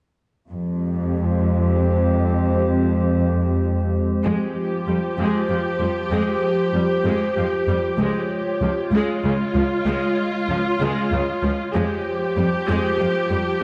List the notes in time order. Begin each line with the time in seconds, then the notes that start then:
0.49 F2 G#3 C4 G4 C5
4.24 F2 F3 G#3 F4 G4 C5
4.87 F2 G3
5.18 F2 G#3
5.49 F2 F3
5.80 F2 G3
6.11 F2 G#3
6.74 F2 G3
7.05 F2 G#3
7.37 F2 F3
7.67 F2 G3
7.98 C#2 G#3 F4 C#5
8.61 C#2 F3
8.92 C#2 G#3 F4
9.23 C#2 C#3
9.55 C#2 F3
9.86 C#2 G#3
10.49 C#2 F3
10.81 C#2 G#3
11.11 C#2 C#3
11.42 C#2 F3
11.73 F2 F3 G#3 F4 G4 C5
12.36 F2 G3
12.67 F2 G#3
12.99 F2 F3
13.30 F2 G3